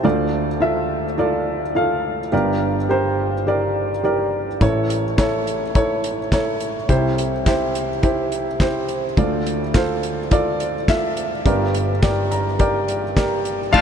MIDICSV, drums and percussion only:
0, 0, Header, 1, 2, 480
1, 0, Start_track
1, 0, Key_signature, -1, "minor"
1, 0, Tempo, 570885
1, 36, Time_signature, 4, 2, 24, 8
1, 11613, End_track
2, 0, Start_track
2, 0, Title_t, "Drums"
2, 3877, Note_on_c, 9, 36, 88
2, 3877, Note_on_c, 9, 42, 65
2, 3961, Note_off_c, 9, 36, 0
2, 3961, Note_off_c, 9, 42, 0
2, 4121, Note_on_c, 9, 42, 74
2, 4205, Note_off_c, 9, 42, 0
2, 4356, Note_on_c, 9, 38, 92
2, 4357, Note_on_c, 9, 36, 94
2, 4358, Note_on_c, 9, 42, 76
2, 4362, Note_on_c, 9, 39, 69
2, 4440, Note_off_c, 9, 38, 0
2, 4441, Note_off_c, 9, 36, 0
2, 4442, Note_off_c, 9, 42, 0
2, 4446, Note_off_c, 9, 39, 0
2, 4601, Note_on_c, 9, 42, 60
2, 4685, Note_off_c, 9, 42, 0
2, 4836, Note_on_c, 9, 42, 70
2, 4837, Note_on_c, 9, 36, 95
2, 4920, Note_off_c, 9, 42, 0
2, 4921, Note_off_c, 9, 36, 0
2, 5078, Note_on_c, 9, 42, 71
2, 5162, Note_off_c, 9, 42, 0
2, 5313, Note_on_c, 9, 36, 87
2, 5315, Note_on_c, 9, 38, 89
2, 5315, Note_on_c, 9, 42, 78
2, 5322, Note_on_c, 9, 39, 65
2, 5397, Note_off_c, 9, 36, 0
2, 5399, Note_off_c, 9, 42, 0
2, 5400, Note_off_c, 9, 38, 0
2, 5406, Note_off_c, 9, 39, 0
2, 5552, Note_on_c, 9, 42, 51
2, 5636, Note_off_c, 9, 42, 0
2, 5794, Note_on_c, 9, 36, 86
2, 5794, Note_on_c, 9, 42, 71
2, 5878, Note_off_c, 9, 36, 0
2, 5878, Note_off_c, 9, 42, 0
2, 6040, Note_on_c, 9, 42, 77
2, 6124, Note_off_c, 9, 42, 0
2, 6274, Note_on_c, 9, 38, 96
2, 6275, Note_on_c, 9, 36, 98
2, 6276, Note_on_c, 9, 42, 78
2, 6281, Note_on_c, 9, 39, 80
2, 6358, Note_off_c, 9, 38, 0
2, 6359, Note_off_c, 9, 36, 0
2, 6360, Note_off_c, 9, 42, 0
2, 6365, Note_off_c, 9, 39, 0
2, 6519, Note_on_c, 9, 42, 62
2, 6603, Note_off_c, 9, 42, 0
2, 6752, Note_on_c, 9, 42, 70
2, 6755, Note_on_c, 9, 36, 97
2, 6836, Note_off_c, 9, 42, 0
2, 6839, Note_off_c, 9, 36, 0
2, 6994, Note_on_c, 9, 42, 68
2, 7078, Note_off_c, 9, 42, 0
2, 7231, Note_on_c, 9, 36, 89
2, 7232, Note_on_c, 9, 38, 82
2, 7232, Note_on_c, 9, 42, 75
2, 7239, Note_on_c, 9, 39, 69
2, 7315, Note_off_c, 9, 36, 0
2, 7316, Note_off_c, 9, 38, 0
2, 7316, Note_off_c, 9, 42, 0
2, 7323, Note_off_c, 9, 39, 0
2, 7470, Note_on_c, 9, 42, 53
2, 7555, Note_off_c, 9, 42, 0
2, 7712, Note_on_c, 9, 42, 68
2, 7713, Note_on_c, 9, 36, 97
2, 7796, Note_off_c, 9, 42, 0
2, 7797, Note_off_c, 9, 36, 0
2, 7959, Note_on_c, 9, 42, 71
2, 8043, Note_off_c, 9, 42, 0
2, 8192, Note_on_c, 9, 38, 93
2, 8194, Note_on_c, 9, 36, 99
2, 8194, Note_on_c, 9, 42, 76
2, 8198, Note_on_c, 9, 39, 75
2, 8276, Note_off_c, 9, 38, 0
2, 8278, Note_off_c, 9, 36, 0
2, 8278, Note_off_c, 9, 42, 0
2, 8282, Note_off_c, 9, 39, 0
2, 8435, Note_on_c, 9, 42, 60
2, 8519, Note_off_c, 9, 42, 0
2, 8671, Note_on_c, 9, 42, 78
2, 8674, Note_on_c, 9, 36, 96
2, 8755, Note_off_c, 9, 42, 0
2, 8758, Note_off_c, 9, 36, 0
2, 8914, Note_on_c, 9, 42, 70
2, 8998, Note_off_c, 9, 42, 0
2, 9150, Note_on_c, 9, 36, 90
2, 9151, Note_on_c, 9, 38, 85
2, 9151, Note_on_c, 9, 42, 76
2, 9158, Note_on_c, 9, 39, 76
2, 9234, Note_off_c, 9, 36, 0
2, 9235, Note_off_c, 9, 38, 0
2, 9235, Note_off_c, 9, 42, 0
2, 9242, Note_off_c, 9, 39, 0
2, 9390, Note_on_c, 9, 42, 57
2, 9474, Note_off_c, 9, 42, 0
2, 9632, Note_on_c, 9, 36, 97
2, 9632, Note_on_c, 9, 42, 71
2, 9716, Note_off_c, 9, 36, 0
2, 9717, Note_off_c, 9, 42, 0
2, 9876, Note_on_c, 9, 42, 70
2, 9960, Note_off_c, 9, 42, 0
2, 10111, Note_on_c, 9, 38, 94
2, 10113, Note_on_c, 9, 36, 101
2, 10113, Note_on_c, 9, 42, 79
2, 10117, Note_on_c, 9, 39, 76
2, 10195, Note_off_c, 9, 38, 0
2, 10197, Note_off_c, 9, 36, 0
2, 10197, Note_off_c, 9, 42, 0
2, 10201, Note_off_c, 9, 39, 0
2, 10355, Note_on_c, 9, 42, 65
2, 10439, Note_off_c, 9, 42, 0
2, 10589, Note_on_c, 9, 42, 72
2, 10593, Note_on_c, 9, 36, 94
2, 10673, Note_off_c, 9, 42, 0
2, 10677, Note_off_c, 9, 36, 0
2, 10833, Note_on_c, 9, 42, 73
2, 10917, Note_off_c, 9, 42, 0
2, 11070, Note_on_c, 9, 36, 83
2, 11073, Note_on_c, 9, 38, 90
2, 11073, Note_on_c, 9, 42, 78
2, 11079, Note_on_c, 9, 39, 67
2, 11154, Note_off_c, 9, 36, 0
2, 11157, Note_off_c, 9, 38, 0
2, 11157, Note_off_c, 9, 42, 0
2, 11163, Note_off_c, 9, 39, 0
2, 11310, Note_on_c, 9, 42, 59
2, 11394, Note_off_c, 9, 42, 0
2, 11552, Note_on_c, 9, 36, 107
2, 11552, Note_on_c, 9, 49, 76
2, 11613, Note_off_c, 9, 36, 0
2, 11613, Note_off_c, 9, 49, 0
2, 11613, End_track
0, 0, End_of_file